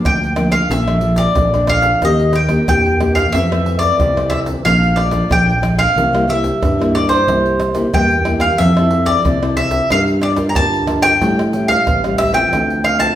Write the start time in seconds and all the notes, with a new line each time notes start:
Already playing: F3 A#3 D4
0.05 D2 D3 G5, pandeiro, tamborim, shaker, surdo
0.23 pandeiro, shaker
0.36 F3 A#3 D4, pandeiro, tamborim, shaker
0.52 F5, pandeiro, tamborim, shaker, surdo
0.70 A#1 A#2 F3 A3 D4 E5, pandeiro, shaker, surdo
0.87 F3 A3 D4, pandeiro, tamborim, shaker
1.01 F3 A3 D4, pandeiro, shaker
1.16 D5, pandeiro, shaker, surdo
1.35 A#1 F2 F3 A3 D4, pandeiro, tamborim, shaker, surdo
1.54 F3 A3 D4, pandeiro, tamborim, shaker
1.67 F5, pandeiro, tamborim, shaker, surdo
1.82 pandeiro, shaker, surdo
2.02 D#2 D#3 A#3 G4 D#5, pandeiro, tamborim, shaker, surdo
2.20 pandeiro, shaker
2.33 G5, pandeiro, tamborim, shaker
2.48 A#3 D4 G4, pandeiro, tamborim, shaker, surdo
2.68 E2 A#2 A#3 D4 G4 G5, pandeiro, tamborim, shaker, surdo
2.85 pandeiro, shaker
3.00 A#3 D4 G4, pandeiro, tamborim, shaker
3.15 F5, pandeiro, tamborim, shaker, surdo
3.32 F2 E3 A3 C4 E5, pandeiro, shaker, surdo
3.51 E3 A3 C4, pandeiro, tamborim, shaker
3.66 pandeiro
3.79 D5, pandeiro, shaker, surdo
3.99 C2 C3, pandeiro, tamborim, shaker, surdo
4.16 E3 A3 C4, pandeiro, tamborim, shaker
4.30 E5, pandeiro, tamborim
4.46 pandeiro, shaker, surdo
4.65 A#1 A#2 F3 A3 D4 F5, pandeiro, tamborim, shaker, surdo
4.83 pandeiro, shaker
4.96 D5, pandeiro, tamborim
5.11 F3 A3 D4, pandeiro, tamborim, shaker, surdo
5.29 A#1 F2 F3 A3 D4 G5, pandeiro, tamborim, shaker, surdo
5.49 pandeiro, shaker
5.62 F3 A3 D4, pandeiro, tamborim, shaker
5.78 F5, pandeiro, tamborim, shaker, surdo
5.95 C2 C3 G3 A#3 E4, pandeiro, shaker, surdo
6.13 G3 A#3 E4, pandeiro, tamborim, shaker
6.27 G3 A#3 E4 E5, pandeiro
6.44 pandeiro, shaker, surdo
6.61 G2, pandeiro, tamborim, shaker, surdo
6.79 G3 A#3 E4, pandeiro, tamborim, shaker
6.95 D5, pandeiro, tamborim, surdo
7.09 C5, pandeiro, shaker, surdo
7.27 C2 C3 G3 A#3 E4, pandeiro, tamborim, shaker, surdo
7.46 pandeiro, shaker
7.60 pandeiro, tamborim, shaker
7.74 G3 A#3 E4, pandeiro, tamborim, shaker, surdo
7.94 E2 G2 G3 A#3 E4 G5, pandeiro, tamborim, shaker, surdo
8.11 pandeiro, shaker
8.25 G3 A#3 E4, pandeiro, tamborim
8.40 F5, pandeiro, tamborim, shaker, surdo
8.58 F2 F3 C4 E4 A4 E5, pandeiro, shaker, surdo
8.77 C4 E4 A4, pandeiro, tamborim, shaker
8.91 pandeiro
9.06 D5, pandeiro, shaker, surdo
9.25 C2 C3 C4 E4 A4, pandeiro, tamborim, shaker, surdo
9.42 C4 E4 A4, pandeiro, tamborim, shaker
9.57 E5, pandeiro, tamborim
9.71 pandeiro, shaker, surdo
9.90 G2 G3 D4 F4 A#4 F5, pandeiro, tamborim, shaker, surdo
10.08 pandeiro, shaker
10.22 D5, pandeiro, tamborim, shaker
10.36 D4 F4 A#4, pandeiro, tamborim, shaker, surdo
10.49 A#5
10.55 G2 D3 D4 F4 A#4 A5, pandeiro, tamborim, shaker, surdo
10.74 pandeiro, shaker
10.87 D4 F4 A#4, pandeiro, tamborim, shaker
11.02 G5, pandeiro, tamborim, shaker, surdo
11.21 A2 G3 C#4 E4, pandeiro, shaker, surdo
11.39 pandeiro, tamborim, shaker
11.53 G3 C#4 E4, pandeiro, shaker
11.68 F5, pandeiro, shaker, surdo
11.87 A1 E3, pandeiro, tamborim, shaker, surdo
12.04 G3 C#4 E4, pandeiro, tamborim, shaker
12.18 E5, pandeiro, tamborim, shaker, surdo
12.33 A3 C4 F4 G5, pandeiro, shaker, surdo
12.53 D2 D3, pandeiro, tamborim, shaker, surdo
12.70 pandeiro, shaker
12.84 F5, pandeiro, tamborim, shaker
12.99 A3 C4 F4 A5, pandeiro, tamborim, shaker, surdo